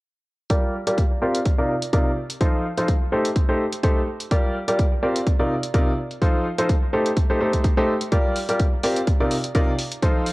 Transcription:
0.50 grand piano G3 F4 G4 A#4 D5, kick, closed hi-hat
0.87 grand piano G3 F4 G4 A#4 D5, closed hi-hat
0.98 kick, closed hi-hat
1.22 grand piano C4 F4 G4 A#4 D5
1.35 closed hi-hat
1.45 kick, closed hi-hat
1.58 grand piano C3 D#4 F4 A#4 D5
1.82 closed hi-hat
1.93 grand piano C3 D#4 F4 A#4 D5, kick, closed hi-hat
2.30 closed hi-hat
2.41 grand piano F3 D#4 F4 A4 C5, kick, closed hi-hat
2.77 grand piano F3 D#4 F4 A4 C5, closed hi-hat
2.88 kick, closed hi-hat
3.12 grand piano A3 D#4 G4 A4 C5
3.25 closed hi-hat
3.36 kick, closed hi-hat
3.49 grand piano A3 D#4 G4 A4 C5
3.73 closed hi-hat
3.83 grand piano A3 D#4 G4 A4 C5, kick, closed hi-hat
4.20 closed hi-hat
4.31 grand piano G3 F4 G4 A#4 D5, kick, closed hi-hat
4.68 grand piano G3 F4 G4 A#4 D5, closed hi-hat
4.79 kick, closed hi-hat
5.02 grand piano C4 F4 G4 A#4 D5
5.16 closed hi-hat
5.26 kick, closed hi-hat
5.39 grand piano C3 D#4 F4 A#4 D5
5.63 closed hi-hat
5.74 grand piano C3 D#4 F4 A#4 D5, kick, closed hi-hat
6.11 closed hi-hat
6.22 grand piano F3 D#4 F4 A4 C5, kick, closed hi-hat
6.58 grand piano F3 D#4 F4 A4 C5, closed hi-hat
6.69 kick, closed hi-hat
6.93 grand piano A3 D#4 G4 A4 C5
7.06 closed hi-hat
7.17 kick, closed hi-hat
7.30 grand piano A3 D#4 G4 A4 C5
7.41 grand piano A3 D#4 G4 A4 C5
7.54 kick, closed hi-hat
7.64 kick, closed hi-hat
7.77 grand piano A3 D#4 G4 A4 C5
8.01 closed hi-hat
8.12 grand piano G3 F4 G4 A#4 D5, kick, closed hi-hat
8.36 open hi-hat
8.49 grand piano G3 F4 G4 A#4 D5, closed hi-hat
8.60 kick, closed hi-hat
8.83 grand piano C4 F4 G4 A#4 D5, open hi-hat
8.96 closed hi-hat
9.07 kick, closed hi-hat
9.20 grand piano C3 D#4 F4 A#4 D5
9.31 open hi-hat
9.44 closed hi-hat
9.55 grand piano C3 D#4 F4 A#4 D5, kick, closed hi-hat
9.79 open hi-hat
9.92 closed hi-hat
10.02 grand piano F3 D#4 F4 A4 C5, kick, closed hi-hat
10.26 open hi-hat

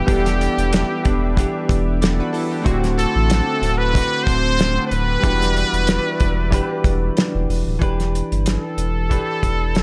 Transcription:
Already playing: trumpet G4, analog synth pad G4 B4 E5 D6
0.05 sub bass E1, clean electric guitar E3 B3 D4 G4, synth keys G3 B3 D4, kick, closed hi-hat
0.10 synth keys A4
0.26 snare, closed hi-hat
0.41 closed hi-hat
0.58 sub bass E1, closed hi-hat
0.73 snare, closed hi-hat
1.03 sub bass E1, clean electric guitar B3 D4 G4, kick, closed hi-hat
1.36 clean electric guitar E3 B3 D4 G4, kick, closed hi-hat
1.69 sub bass E1, kick, closed hi-hat
2.01 synth keys A4 D5, snare, closed hi-hat
2.20 synth keys F#4 B4
2.33 synth keys E4 A4, open hi-hat
2.51 synth keys D4 G4
2.62 clean electric guitar D3 A3, synth keys A3 C4 E4, analog synth pad C4 F#5 A5 D6
2.66 sub bass D1, clean electric guitar C4 F#4, synth keys F#4, kick, closed hi-hat
2.84 snare, closed hi-hat
2.98 trumpet A4, closed hi-hat
3.15 sub bass A1
3.30 snare, closed hi-hat
3.62 sub bass D1, clean electric guitar A3 C4 F#4, closed hi-hat
3.78 trumpet B4
3.93 clean electric guitar D3 A3 C4, kick, closed hi-hat
3.97 clean electric guitar F#4
4.23 sub bass D1, trumpet C5, kick
4.28 closed hi-hat
4.59 snare, closed hi-hat
4.87 sub bass D1, trumpet B4
4.91 closed hi-hat
5.20 clean electric guitar E3, synth keys G3 B3 D4, analog synth pad B4 D5 E5 D6, closed hi-hat
5.24 sub bass E1, clean electric guitar D4 G4 B4, synth keys F#4, kick
5.42 snare, closed hi-hat
5.57 closed hi-hat
5.73 sub bass E1, closed hi-hat
5.87 snare, closed hi-hat
6.20 sub bass E1, kick, closed hi-hat
6.51 clean electric guitar E3 D4 G4 B4, kick, closed hi-hat
6.84 sub bass E1, kick, closed hi-hat
7.17 snare, closed hi-hat
7.35 sub bass E1
7.49 sub bass E1, open hi-hat
7.66 sub bass D1
7.79 sub bass E1, clean electric guitar E3 D4 G4, kick, closed hi-hat
7.83 clean electric guitar B4
8.00 snare, closed hi-hat
8.15 closed hi-hat
8.32 sub bass G1, closed hi-hat
8.46 snare, closed hi-hat
8.50 trumpet A4
8.77 sub bass E1, closed hi-hat
9.09 clean electric guitar E3 D4 G4 B4, kick, closed hi-hat
9.43 sub bass E1, kick, closed hi-hat
9.75 snare, closed hi-hat

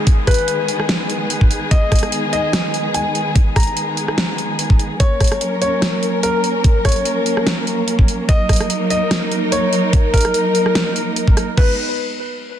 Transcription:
Already playing: string section D#3 G#3 B3 G#4, grand piano G#4, downlifter
0.07 kick, closed hi-hat
0.27 grand piano B4, kick, cross-stick, closed hi-hat
0.31 closed hi-hat
0.34 closed hi-hat
0.38 closed hi-hat
0.48 closed hi-hat
0.68 closed hi-hat
0.80 cross-stick
0.89 snare, closed hi-hat
1.10 closed hi-hat
1.30 closed hi-hat
1.41 kick
1.51 closed hi-hat
1.71 grand piano D#5, kick, closed hi-hat
1.92 kick, cross-stick, closed hi-hat
1.95 closed hi-hat
1.99 closed hi-hat
2.03 cross-stick, closed hi-hat
2.12 closed hi-hat
2.33 grand piano D#5, closed hi-hat
2.53 snare, closed hi-hat
2.74 closed hi-hat
2.94 grand piano G#5, closed hi-hat
3.15 closed hi-hat
3.36 kick, closed hi-hat
3.56 grand piano A#5, kick, cross-stick, closed hi-hat
3.60 closed hi-hat
3.63 closed hi-hat
3.67 closed hi-hat
3.77 closed hi-hat
3.97 closed hi-hat
4.08 cross-stick
4.18 snare, closed hi-hat
4.38 closed hi-hat
4.59 closed hi-hat
4.70 kick
4.79 closed hi-hat
5.00 string section F#3 A#3 C#4 A#4, grand piano C#5, kick, closed hi-hat
5.20 kick, cross-stick, closed hi-hat
5.24 closed hi-hat
5.27 closed hi-hat
5.32 cross-stick
5.41 closed hi-hat
5.62 grand piano C#5, closed hi-hat
5.82 snare, closed hi-hat
6.03 closed hi-hat
6.23 grand piano A#4, closed hi-hat
6.44 closed hi-hat
6.64 kick, closed hi-hat
6.85 grand piano C#5, kick, cross-stick, closed hi-hat
6.89 closed hi-hat
6.92 closed hi-hat
6.96 closed hi-hat
7.05 closed hi-hat
7.26 closed hi-hat
7.37 cross-stick
7.47 snare, closed hi-hat
7.67 closed hi-hat
7.88 closed hi-hat
7.99 kick
8.08 closed hi-hat
8.29 string section D#4 A#4, grand piano D#5, kick, closed hi-hat
8.49 kick, cross-stick, closed hi-hat
8.53 closed hi-hat
8.56 closed hi-hat
8.60 cross-stick, closed hi-hat
8.70 closed hi-hat
8.90 grand piano D#5, closed hi-hat
9.11 snare, closed hi-hat
9.32 closed hi-hat
9.52 grand piano C#5, closed hi-hat
9.73 closed hi-hat
9.93 kick, closed hi-hat
10.14 grand piano A#4, kick, closed hi-hat
10.17 closed hi-hat
10.21 closed hi-hat
10.25 cross-stick, closed hi-hat
10.34 closed hi-hat
10.55 closed hi-hat
10.66 cross-stick
10.75 snare, closed hi-hat
10.96 closed hi-hat
11.16 closed hi-hat
11.28 kick
11.37 cross-stick, closed hi-hat
11.57 string section G#3 B3 D#4 B4, grand piano B4, kick, crash

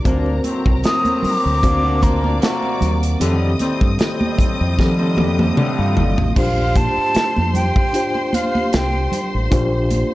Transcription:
0.04 fingered electric bass D2, horn section A#2 A#3 D4, reed electric piano C4 F#4 A#4 C5, string section A#4 A#5, kick, closed hi-hat, muted conga, low conga
0.26 muted conga
0.44 horn section A2 F#3 C4, closed hi-hat, high conga
0.66 fingered electric bass C2, kick
0.83 horn section A2 F#3 C4, flute D#6, snare, closed hi-hat, muted conga
1.05 closed hi-hat, muted conga, high conga
1.23 flute D6, muted fingered electric bass stroke, open hi-hat, low conga
1.46 fingered electric bass D2
1.62 horn section A#2 A#3 D4, reed electric piano C4 F#4 A#4 C5, kick, closed hi-hat
1.84 clean electric guitar F#4 D5
2.02 clean electric guitar C5, string section D5 D6, flute A#5, kick, closed hi-hat, high conga
2.24 clean electric guitar D4 A#4, high conga
2.42 horn section C3 A#3 F#4, clean electric guitar C4 A4, flute A#5, snare, closed hi-hat
2.63 clean electric guitar A#3 F#4, muted conga
2.81 fingered electric bass D#2, closed hi-hat, low conga
3.03 closed hi-hat
3.20 fingered electric bass F2, horn section A2 D3 G3, reed electric piano D#3 C4 G4 A4, string section D#5 D#6, closed hi-hat, muted conga, low conga
3.59 horn section A2 G3 C4, closed hi-hat, high conga
3.81 fingered electric bass G2, kick
3.99 horn section A2 G3 C4, snare, closed hi-hat, muted conga
4.21 muted conga, high conga
4.38 muted fingered electric bass stroke, kick, closed hi-hat, low conga
4.61 fingered electric bass F2
4.77 horn section A2 D3 G3, reed electric piano D#3 C4 G4 A4, fingered electric bass F3, kick, snare, muted conga
4.99 clean electric guitar D#4 C5, muted conga
5.17 fingered electric bass F2, clean electric guitar G4, high tom, high conga
5.39 clean electric guitar C4 A4, high tom, high conga
5.57 horn section A2 D3 G3, mid tom, muted conga
5.78 fingered electric bass G2, clean electric guitar A3 F4, muted conga
5.97 fingered electric bass G1, floor tom, low conga
6.18 fingered electric bass A1, floor tom
6.35 fingered electric bass A#1, french horn section D3 A#3 C4 G4, reed electric piano D4 F4 G4 C5, string section C5 C6, flute F5, kick, crash, muted conga, low conga
6.58 muted conga
6.75 flute A5, kick, closed hi-hat, high conga
6.98 muted fingered electric bass stroke
7.15 muted fingered electric bass stroke, snare, closed hi-hat, muted conga
7.36 fingered electric bass F2, high conga
7.54 flute G5, closed hi-hat, low conga
7.76 kick
7.93 reed electric piano D4 F4 G4 C5, closed hi-hat
8.15 muted conga
8.33 flute F5, closed hi-hat, high conga
8.55 high conga
8.73 fingered electric bass C2, flute G5, snare, closed hi-hat
8.94 muted conga
9.12 closed hi-hat, low conga
9.35 fingered electric bass A1
9.51 fingered electric bass A#1, reed electric piano D4 F4 G4 C5, french horn section F4, kick, closed hi-hat, muted conga, low conga
9.90 closed hi-hat, high conga

